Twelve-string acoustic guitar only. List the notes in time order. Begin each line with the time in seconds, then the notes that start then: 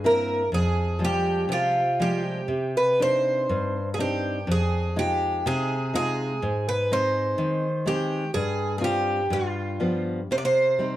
0.06 A#4
0.54 G#4
1.05 G4
1.52 F4 G4
2.02 G4
2.77 B4
3.02 C5
3.94 G#4
4.00 G4
4.52 G#4
4.99 G4
5.47 G#4
5.96 G#4
6.69 B4
6.93 C5
7.87 G4
8.34 G#4
8.78 G#4
8.84 G4
9.33 F4
10.32 C5
10.38 D5
10.45 C5